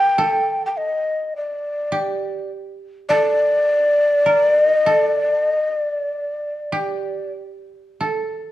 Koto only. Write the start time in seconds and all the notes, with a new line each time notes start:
Already playing: A#4
0.18 A4
1.92 G4
3.10 A4
4.26 A#4
4.86 A4
6.72 G4
8.01 A4